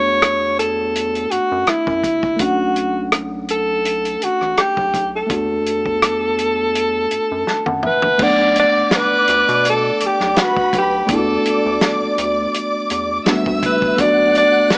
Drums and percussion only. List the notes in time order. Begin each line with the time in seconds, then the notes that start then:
0.22 cross-stick, closed hi-hat
0.59 closed hi-hat
0.95 closed hi-hat
1.15 closed hi-hat
1.31 closed hi-hat
1.67 cross-stick, closed hi-hat
1.87 kick
2.04 kick, closed hi-hat
2.23 kick
2.39 kick, closed hi-hat
2.76 closed hi-hat
3.12 cross-stick, closed hi-hat
3.48 closed hi-hat
3.85 closed hi-hat
4.05 closed hi-hat
4.22 closed hi-hat
4.41 cross-stick
4.57 cross-stick, closed hi-hat
4.77 kick
4.94 kick, closed hi-hat
5.30 kick, closed hi-hat
5.66 closed hi-hat
5.86 kick
6.02 cross-stick, closed hi-hat
6.38 closed hi-hat
6.75 closed hi-hat
7.11 closed hi-hat
7.47 snare
7.66 high tom
7.83 mid tom
8.02 floor tom
8.19 kick, crash
8.56 closed hi-hat
8.91 snare, closed hi-hat
9.28 closed hi-hat
9.48 closed hi-hat
9.65 closed hi-hat
10.00 closed hi-hat
10.20 snare
10.36 snare, closed hi-hat
10.57 kick
10.73 kick, closed hi-hat
11.08 kick, closed hi-hat
11.45 closed hi-hat
11.81 snare, closed hi-hat
12.18 closed hi-hat
12.54 closed hi-hat
12.90 closed hi-hat
13.26 snare, closed hi-hat
13.46 kick
13.63 kick, closed hi-hat
13.82 kick
13.98 kick, closed hi-hat
14.35 closed hi-hat
14.70 snare, closed hi-hat